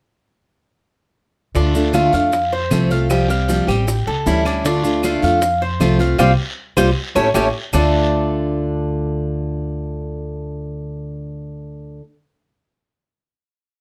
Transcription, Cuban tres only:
0, 0, Header, 1, 2, 480
1, 0, Start_track
1, 0, Key_signature, -1, "minor"
1, 0, Tempo, 385604
1, 1936, Time_signature, 4, 2, 24, 8
1, 17188, End_track
2, 0, Start_track
2, 0, Title_t, "Cuban tres"
2, 0, Program_c, 0, 25
2, 1941, Note_on_c, 0, 62, 61
2, 2405, Note_off_c, 0, 62, 0
2, 2416, Note_on_c, 0, 65, 60
2, 2650, Note_off_c, 0, 65, 0
2, 2664, Note_on_c, 0, 77, 68
2, 3127, Note_off_c, 0, 77, 0
2, 3144, Note_on_c, 0, 72, 70
2, 3608, Note_off_c, 0, 72, 0
2, 3626, Note_on_c, 0, 77, 69
2, 4089, Note_off_c, 0, 77, 0
2, 4109, Note_on_c, 0, 77, 67
2, 4572, Note_off_c, 0, 77, 0
2, 4588, Note_on_c, 0, 67, 72
2, 5051, Note_off_c, 0, 67, 0
2, 5071, Note_on_c, 0, 69, 77
2, 5534, Note_off_c, 0, 69, 0
2, 5551, Note_on_c, 0, 62, 75
2, 5781, Note_off_c, 0, 62, 0
2, 5797, Note_on_c, 0, 62, 68
2, 6257, Note_off_c, 0, 62, 0
2, 6282, Note_on_c, 0, 65, 63
2, 6507, Note_off_c, 0, 65, 0
2, 6520, Note_on_c, 0, 77, 72
2, 6979, Note_off_c, 0, 77, 0
2, 6995, Note_on_c, 0, 72, 71
2, 7457, Note_off_c, 0, 72, 0
2, 7471, Note_on_c, 0, 77, 64
2, 7702, Note_off_c, 0, 77, 0
2, 7704, Note_on_c, 0, 65, 84
2, 7710, Note_on_c, 0, 67, 82
2, 7717, Note_on_c, 0, 72, 73
2, 7861, Note_off_c, 0, 65, 0
2, 7861, Note_off_c, 0, 72, 0
2, 7862, Note_off_c, 0, 67, 0
2, 8424, Note_on_c, 0, 72, 88
2, 8429, Note_on_c, 0, 67, 92
2, 8437, Note_on_c, 0, 65, 85
2, 8581, Note_off_c, 0, 67, 0
2, 8581, Note_off_c, 0, 72, 0
2, 8583, Note_off_c, 0, 65, 0
2, 8910, Note_on_c, 0, 73, 108
2, 8912, Note_on_c, 0, 69, 94
2, 8918, Note_on_c, 0, 67, 89
2, 9063, Note_off_c, 0, 67, 0
2, 9063, Note_off_c, 0, 69, 0
2, 9064, Note_off_c, 0, 73, 0
2, 9143, Note_on_c, 0, 67, 90
2, 9150, Note_on_c, 0, 69, 87
2, 9157, Note_on_c, 0, 73, 70
2, 9300, Note_off_c, 0, 67, 0
2, 9302, Note_off_c, 0, 69, 0
2, 9302, Note_off_c, 0, 73, 0
2, 9623, Note_on_c, 0, 62, 71
2, 9627, Note_on_c, 0, 69, 62
2, 9639, Note_on_c, 0, 74, 65
2, 14901, Note_off_c, 0, 62, 0
2, 14907, Note_off_c, 0, 69, 0
2, 14911, Note_off_c, 0, 74, 0
2, 17188, End_track
0, 0, End_of_file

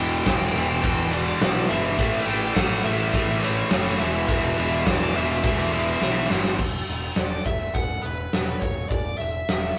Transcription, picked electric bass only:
0, 0, Header, 1, 2, 480
1, 0, Start_track
1, 0, Tempo, 577478
1, 1651, Time_signature, 4, 2, 24, 8
1, 8134, End_track
2, 0, Start_track
2, 0, Title_t, "Picked electric bass"
2, 0, Program_c, 0, 34
2, 0, Note_on_c, 0, 28, 92
2, 179, Note_off_c, 0, 28, 0
2, 215, Note_on_c, 0, 28, 92
2, 417, Note_off_c, 0, 28, 0
2, 453, Note_on_c, 0, 28, 93
2, 656, Note_off_c, 0, 28, 0
2, 694, Note_on_c, 0, 28, 91
2, 1099, Note_off_c, 0, 28, 0
2, 1175, Note_on_c, 0, 35, 91
2, 1376, Note_off_c, 0, 35, 0
2, 1414, Note_on_c, 0, 31, 94
2, 1615, Note_off_c, 0, 31, 0
2, 1650, Note_on_c, 0, 33, 101
2, 1853, Note_off_c, 0, 33, 0
2, 1891, Note_on_c, 0, 33, 91
2, 2093, Note_off_c, 0, 33, 0
2, 2131, Note_on_c, 0, 33, 87
2, 2333, Note_off_c, 0, 33, 0
2, 2364, Note_on_c, 0, 33, 91
2, 2569, Note_off_c, 0, 33, 0
2, 2606, Note_on_c, 0, 33, 89
2, 3012, Note_off_c, 0, 33, 0
2, 3091, Note_on_c, 0, 30, 94
2, 3292, Note_off_c, 0, 30, 0
2, 3325, Note_on_c, 0, 28, 88
2, 3529, Note_off_c, 0, 28, 0
2, 3560, Note_on_c, 0, 28, 104
2, 3766, Note_off_c, 0, 28, 0
2, 3808, Note_on_c, 0, 28, 90
2, 4010, Note_off_c, 0, 28, 0
2, 4040, Note_on_c, 0, 28, 85
2, 4245, Note_off_c, 0, 28, 0
2, 4279, Note_on_c, 0, 28, 87
2, 4484, Note_off_c, 0, 28, 0
2, 4521, Note_on_c, 0, 28, 93
2, 4929, Note_off_c, 0, 28, 0
2, 5001, Note_on_c, 0, 35, 97
2, 5206, Note_off_c, 0, 35, 0
2, 5243, Note_on_c, 0, 31, 91
2, 5447, Note_off_c, 0, 31, 0
2, 5478, Note_on_c, 0, 28, 83
2, 5659, Note_off_c, 0, 28, 0
2, 5717, Note_on_c, 0, 28, 76
2, 5898, Note_off_c, 0, 28, 0
2, 5956, Note_on_c, 0, 28, 74
2, 6138, Note_off_c, 0, 28, 0
2, 6198, Note_on_c, 0, 28, 82
2, 6379, Note_off_c, 0, 28, 0
2, 6440, Note_on_c, 0, 28, 84
2, 6620, Note_off_c, 0, 28, 0
2, 6684, Note_on_c, 0, 28, 86
2, 6863, Note_off_c, 0, 28, 0
2, 6928, Note_on_c, 0, 28, 81
2, 7105, Note_off_c, 0, 28, 0
2, 7163, Note_on_c, 0, 28, 82
2, 7343, Note_off_c, 0, 28, 0
2, 7404, Note_on_c, 0, 28, 82
2, 7583, Note_off_c, 0, 28, 0
2, 7647, Note_on_c, 0, 28, 79
2, 7826, Note_off_c, 0, 28, 0
2, 7891, Note_on_c, 0, 28, 83
2, 8069, Note_off_c, 0, 28, 0
2, 8134, End_track
0, 0, End_of_file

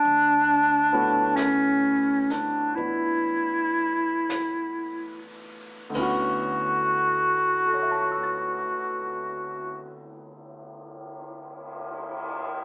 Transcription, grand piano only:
0, 0, Header, 1, 2, 480
1, 0, Start_track
1, 0, Key_signature, 2, "major"
1, 0, Tempo, 1321586
1, 19, Time_signature, 4, 2, 24, 8
1, 499, Tempo, 1408451
1, 979, Tempo, 1518987
1, 1459, Tempo, 1643836
1, 1939, Tempo, 1690141
1, 3842, End_track
2, 0, Start_track
2, 0, Title_t, "Grand piano"
2, 0, Program_c, 0, 0
2, 0, Control_c, 0, 64, 127
2, 336, Note_on_c, 0, 57, 52
2, 336, Note_on_c, 0, 59, 48
2, 338, Note_on_c, 0, 73, 47
2, 340, Note_on_c, 0, 64, 49
2, 340, Note_on_c, 0, 66, 56
2, 969, Note_off_c, 0, 59, 0
2, 974, Note_on_c, 0, 59, 37
2, 977, Note_off_c, 0, 64, 0
2, 979, Note_on_c, 0, 62, 33
2, 982, Note_on_c, 0, 64, 38
2, 1925, Note_on_c, 0, 38, 55
2, 1931, Note_on_c, 0, 50, 51
2, 1935, Note_off_c, 0, 59, 0
2, 1936, Note_off_c, 0, 57, 0
2, 1937, Note_off_c, 0, 73, 0
2, 1938, Note_off_c, 0, 62, 0
2, 1938, Note_off_c, 0, 66, 0
2, 1939, Note_off_c, 0, 64, 0
2, 1940, Note_on_c, 0, 59, 53
2, 1941, Control_c, 0, 64, 0
2, 1945, Note_on_c, 0, 61, 49
2, 1951, Note_on_c, 0, 64, 50
2, 1958, Note_on_c, 0, 66, 61
2, 1994, Control_c, 0, 64, 127
2, 2425, Note_on_c, 0, 69, 37
2, 2447, Note_on_c, 0, 73, 37
2, 2472, Note_on_c, 0, 76, 34
2, 2497, Note_on_c, 0, 81, 34
2, 2524, Note_on_c, 0, 85, 31
2, 2556, Note_on_c, 0, 88, 29
2, 2588, Note_on_c, 0, 93, 29
2, 3094, Note_off_c, 0, 38, 0
2, 3101, Note_off_c, 0, 50, 0
2, 3109, Note_off_c, 0, 59, 0
2, 3114, Note_off_c, 0, 61, 0
2, 3120, Note_off_c, 0, 64, 0
2, 3127, Note_off_c, 0, 66, 0
2, 3584, Note_off_c, 0, 69, 0
2, 3605, Note_off_c, 0, 73, 0
2, 3630, Note_off_c, 0, 76, 0
2, 3655, Note_off_c, 0, 81, 0
2, 3683, Note_off_c, 0, 85, 0
2, 3714, Note_off_c, 0, 88, 0
2, 3746, Note_off_c, 0, 93, 0
2, 3842, End_track
0, 0, End_of_file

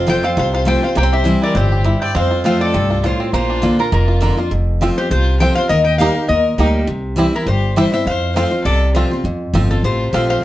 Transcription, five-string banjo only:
0, 0, Header, 1, 2, 480
1, 0, Start_track
1, 0, Tempo, 295567
1, 1572, Time_signature, 4, 2, 24, 8
1, 16959, End_track
2, 0, Start_track
2, 0, Title_t, "Five-string banjo"
2, 0, Program_c, 0, 105
2, 129, Note_on_c, 0, 65, 59
2, 383, Note_on_c, 0, 60, 69
2, 593, Note_off_c, 0, 65, 0
2, 612, Note_on_c, 0, 65, 64
2, 853, Note_off_c, 0, 65, 0
2, 873, Note_on_c, 0, 65, 55
2, 1068, Note_off_c, 0, 65, 0
2, 1088, Note_on_c, 0, 65, 54
2, 1330, Note_off_c, 0, 65, 0
2, 1350, Note_on_c, 0, 65, 57
2, 1569, Note_off_c, 0, 60, 0
2, 1572, Note_off_c, 0, 65, 0
2, 1575, Note_on_c, 0, 58, 78
2, 1673, Note_off_c, 0, 58, 0
2, 1673, Note_on_c, 0, 60, 72
2, 1830, Note_on_c, 0, 67, 61
2, 2031, Note_off_c, 0, 60, 0
2, 2050, Note_on_c, 0, 60, 62
2, 2304, Note_on_c, 0, 64, 53
2, 2489, Note_off_c, 0, 67, 0
2, 2516, Note_off_c, 0, 60, 0
2, 2536, Note_on_c, 0, 60, 63
2, 2795, Note_on_c, 0, 67, 60
2, 2966, Note_off_c, 0, 64, 0
2, 3009, Note_on_c, 0, 64, 58
2, 3224, Note_off_c, 0, 60, 0
2, 3278, Note_on_c, 0, 60, 61
2, 3452, Note_off_c, 0, 67, 0
2, 3468, Note_off_c, 0, 60, 0
2, 3488, Note_on_c, 0, 60, 76
2, 3493, Note_off_c, 0, 64, 0
2, 3750, Note_on_c, 0, 65, 60
2, 3960, Note_off_c, 0, 60, 0
2, 3980, Note_on_c, 0, 60, 60
2, 4239, Note_off_c, 0, 65, 0
2, 4239, Note_on_c, 0, 65, 53
2, 4433, Note_off_c, 0, 60, 0
2, 4452, Note_on_c, 0, 60, 62
2, 4716, Note_off_c, 0, 65, 0
2, 4716, Note_on_c, 0, 65, 59
2, 4929, Note_off_c, 0, 65, 0
2, 4929, Note_on_c, 0, 65, 58
2, 5143, Note_off_c, 0, 60, 0
2, 5197, Note_on_c, 0, 60, 59
2, 5408, Note_off_c, 0, 60, 0
2, 5414, Note_on_c, 0, 58, 75
2, 5673, Note_off_c, 0, 65, 0
2, 5680, Note_on_c, 0, 62, 58
2, 5901, Note_on_c, 0, 65, 62
2, 6104, Note_off_c, 0, 58, 0
2, 6168, Note_on_c, 0, 70, 55
2, 6336, Note_off_c, 0, 62, 0
2, 6375, Note_on_c, 0, 58, 61
2, 6588, Note_off_c, 0, 65, 0
2, 6627, Note_on_c, 0, 65, 56
2, 6820, Note_off_c, 0, 70, 0
2, 6831, Note_off_c, 0, 58, 0
2, 6851, Note_on_c, 0, 58, 67
2, 7101, Note_off_c, 0, 65, 0
2, 7120, Note_on_c, 0, 65, 57
2, 7335, Note_off_c, 0, 58, 0
2, 7340, Note_off_c, 0, 65, 0
2, 7824, Note_on_c, 0, 60, 70
2, 7835, Note_on_c, 0, 65, 69
2, 7867, Note_off_c, 0, 65, 0
2, 7937, Note_off_c, 0, 60, 0
2, 8795, Note_on_c, 0, 60, 61
2, 8803, Note_on_c, 0, 65, 60
2, 8835, Note_off_c, 0, 65, 0
2, 8901, Note_off_c, 0, 60, 0
2, 9765, Note_on_c, 0, 58, 70
2, 9770, Note_on_c, 0, 63, 69
2, 9781, Note_on_c, 0, 67, 66
2, 9865, Note_off_c, 0, 58, 0
2, 9870, Note_off_c, 0, 63, 0
2, 9870, Note_off_c, 0, 67, 0
2, 10710, Note_on_c, 0, 58, 67
2, 10718, Note_on_c, 0, 63, 62
2, 10720, Note_on_c, 0, 67, 65
2, 10818, Note_off_c, 0, 58, 0
2, 10820, Note_off_c, 0, 63, 0
2, 10822, Note_off_c, 0, 67, 0
2, 11664, Note_on_c, 0, 60, 65
2, 11672, Note_on_c, 0, 64, 65
2, 11678, Note_on_c, 0, 67, 66
2, 11774, Note_off_c, 0, 60, 0
2, 11778, Note_off_c, 0, 67, 0
2, 11779, Note_off_c, 0, 64, 0
2, 12617, Note_on_c, 0, 60, 68
2, 12626, Note_on_c, 0, 67, 66
2, 12630, Note_on_c, 0, 64, 64
2, 12730, Note_off_c, 0, 60, 0
2, 12733, Note_off_c, 0, 64, 0
2, 12734, Note_off_c, 0, 67, 0
2, 13582, Note_on_c, 0, 60, 72
2, 13593, Note_on_c, 0, 65, 69
2, 13625, Note_off_c, 0, 65, 0
2, 13693, Note_off_c, 0, 60, 0
2, 14553, Note_on_c, 0, 60, 64
2, 14556, Note_on_c, 0, 65, 66
2, 14588, Note_off_c, 0, 65, 0
2, 14657, Note_off_c, 0, 60, 0
2, 15508, Note_on_c, 0, 60, 65
2, 15515, Note_on_c, 0, 65, 66
2, 15547, Note_off_c, 0, 65, 0
2, 15614, Note_off_c, 0, 60, 0
2, 16468, Note_on_c, 0, 60, 64
2, 16475, Note_on_c, 0, 65, 64
2, 16507, Note_off_c, 0, 65, 0
2, 16573, Note_off_c, 0, 60, 0
2, 16959, End_track
0, 0, End_of_file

